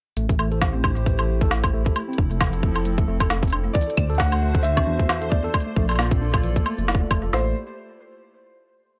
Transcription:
0.17 A1 A3 E4 G4 C5, closed hi-hat
0.29 A3, kick, closed hi-hat
0.39 A3, high woodblock
0.52 A4, closed hi-hat
0.62 A3, kick, snare, closed hi-hat
0.74 C4
0.84 D4, kick, high woodblock
0.96 A3, closed hi-hat
1.06 E3, kick, closed hi-hat
1.19 A4, high woodblock
1.29 A3
1.41 A4, kick, closed hi-hat
1.51 A3, snare, closed hi-hat
1.64 A3, kick, closed hi-hat, high woodblock
1.73 A3
1.86 A4, kick
1.96 F3 A3 C4 A4, closed hi-hat, high woodblock
2.08 C4
2.13 closed hi-hat
2.18 F1 D4, kick
2.31 A3, closed hi-hat
2.41 E3, kick, snare, closed hi-hat, high woodblock
2.53 A4, closed hi-hat
2.63 A3, kick
2.76 A4, closed hi-hat, high woodblock
2.85 A3, closed hi-hat
2.98 A3, kick, closed hi-hat
3.08 F1 A3
3.20 A4, kick, closed hi-hat, high woodblock
3.30 A3, snare, closed hi-hat
3.43 C4, kick, closed hi-hat
3.45 closed hi-hat
3.48 closed hi-hat
3.50 D4, closed hi-hat, high woodblock
3.65 A3
3.73 D3 E3 D4 F#4 C5 D5, kick, closed hi-hat
3.81 closed hi-hat
3.87 A4, closed hi-hat
3.97 D2 A3, kick, high woodblock
4.10 A4, closed hi-hat
4.15 F#5, closed hi-hat
4.20 A3, kick, snare, closed hi-hat
4.26 closed hi-hat
4.32 A3, closed hi-hat, high woodblock
4.42 A3
4.55 A4, kick, closed hi-hat
4.63 A3 E5, closed hi-hat
4.77 C4, kick, closed hi-hat, high woodblock
4.87 E2 D4
4.99 A3, kick, closed hi-hat
5.09 E3, snare, high woodblock
5.22 A4, closed hi-hat
5.30 A3 D5, kick
5.44 A4
5.54 A3 A#3 F4 A4 D5, kick, closed hi-hat, high woodblock
5.60 closed hi-hat
5.66 A3
5.76 A#1 A3, kick
5.89 A4, closed hi-hat, high woodblock
5.91 closed hi-hat, high woodblock
5.93 closed hi-hat
5.95 closed hi-hat, high woodblock
5.97 A#3, snare, closed hi-hat
5.99 closed hi-hat, high woodblock
6.03 high woodblock
6.06 high woodblock
6.11 C4, kick, closed hi-hat
6.21 D4
6.34 A3, kick, closed hi-hat, high woodblock
6.44 E3, closed hi-hat
6.56 A4, kick, closed hi-hat
6.66 A3, high woodblock
6.78 F1 A3, closed hi-hat
6.88 E4, snare, closed hi-hat
6.95 kick
7.01 A3
7.11 F1 A3, kick, closed hi-hat, high woodblock
7.23 F1 A4
7.33 A1 A3 E4 G4 C5, snare

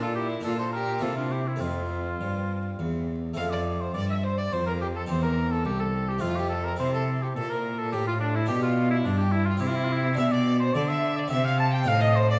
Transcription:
Already playing: A#2 A#3 D4
0.01 F4 A4
0.16 E4 G4
0.40 A#2 A#3 D4
0.45 F4 A4
0.59 A4 C5
0.73 G4 A#4
0.98 C3 A#3 E4 F4
1.03 A4
1.17 D4 F4
1.31 E4 G4
1.46 C4 E4
1.56 A3 C4
1.60 F2 C4 F4
2.20 G2
2.79 E2
3.34 F2 A3 C4 F4 F5
3.38 F2
3.50 D5
3.81 C5
3.94 G2 D5
4.09 E5
4.23 C5
4.38 D5
4.52 F2 C5
4.67 A#4
4.81 G4
4.96 A4
5.07 E2 C4 G4 C5
5.23 A#4
5.52 A4
5.65 C2 G4
5.80 A4
6.09 G4
6.18 A3 C4 F4
6.23 F2 F4
6.36 G4
6.49 A4
6.65 A#4
6.76 C3 C4 E4 C5
6.93 A4
7.23 G4
7.36 A#2 A4
7.50 A#4
7.79 A4
7.92 A2 G4
8.07 F4
8.20 D4
8.36 E4
8.46 B2 D4 G4
8.63 F4
8.91 E4
9.05 G2 D4
9.18 G4
9.32 E4
9.46 F4
9.57 C3 C4 E4 G4
9.64 E4
9.68 F4
9.77 E4
9.85 F4
9.93 E4
10.15 B2 D4 G4 E5
10.32 D5
10.60 C5
10.74 D3 D5
10.89 E5
11.17 D5
11.28 C3 C4 G4 E5
11.46 F5
11.60 A5
11.73 G5
11.84 A2 C4 D#4 F5
11.88 F5
12.01 D#5
12.16 C5
12.30 D5

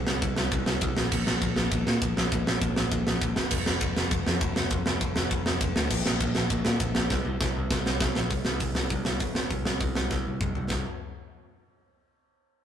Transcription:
0.07 C2, snare
0.22 C2, kick, ride
0.36 C2, snare
0.52 C2, kick, ride
0.66 C2, snare
0.81 C2, kick, ride
0.97 A#1, snare
1.12 A#1, kick, crash
1.27 A#1, snare
1.42 A#1, kick, ride
1.56 A#1, snare
1.71 A#1, kick, ride
1.87 A#2, snare
2.02 A#1, kick, ride
2.17 A#1, snare
2.32 A#1, kick, ride
2.46 A#1, snare
2.61 A#1, kick, ride
2.76 A#1, snare
2.92 A#1, kick, ride
3.07 A#1, snare
3.22 A#1, kick, ride
3.36 G1, snare
3.51 F1, kick, crash
3.66 F1, snare
3.81 F1, kick, ride
3.96 F1, snare
4.11 F1, kick, ride
4.27 F2, snare
4.41 F1, kick, ride
4.56 F1, snare
4.70 F1, kick, ride
4.86 F1, snare
5.01 F1, kick, ride
5.16 F1, snare
5.31 F1, kick, ride
5.46 F1, snare
5.61 F1, kick, ride
5.76 D2, snare
5.90 A#1, kick, crash
6.06 A#1, snare
6.20 A#1, kick, ride
6.35 A#1, snare
6.50 A#1, kick, ride
6.65 A#2, snare
6.80 A#1, kick, ride
6.95 A#1, snare
7.10 C2, kick, snare
7.25 C2
7.40 C2, kick, snare
7.56 C2
7.71 C2, kick, snare
7.86 C2, snare
8.00 C2, kick, snare
8.15 A#1, snare
8.30 C2, kick, open hi-hat
8.45 C2, snare
8.60 C2, kick, open hi-hat
8.75 C2, snare
8.89 C2, kick, open hi-hat
9.05 C2, snare
9.20 G1, kick, open hi-hat
9.35 snare
9.51 C2, kick, open hi-hat
9.65 C2, snare
9.80 C2, kick, open hi-hat
9.95 snare
10.11 C2, kick, snare
10.27 C2
10.41 C2, kick, mid tom
10.55 C2, floor tom
10.70 C2, kick, snare, splash

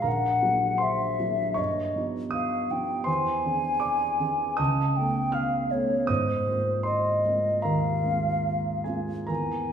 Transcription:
0.02 A#1 A#4 A#5
0.08 F#5
0.42 F#3 A#3 D4 G#4
0.78 C5 C6
0.82 E5
1.20 F#3 A#3 D4 G#4
1.54 G2 C#5 D#5 C#6
1.96 F3 B3 D#4 G4
2.31 D#5 F5 D#6
2.71 F3 B3 D#4 G4 G5
3.04 E2 C5 G#5 C6
3.45 E3 C4 D4 G#4
3.80 D5 D6
4.20 E3 C4 D4 G#4
4.57 C#2 D#5 A5 D#6
4.97 A3 B3 C#4 A4 G5
5.32 F5 F6
5.71 A3 B3 C#4 A4 C#5
6.07 G#2 C5 D#5 D#6
6.47 G#3 A#3 C4 F4
6.83 C5 D#5 C6
7.25 G#3 A#3 C4 F4
7.62 D#2 A#4 F5 A#5
8.04 G#3 A#3 C4 F4
8.84 G#3 A#3 C4 F4 G#4 G#5
9.27 E2 A#4 G#5 A#5

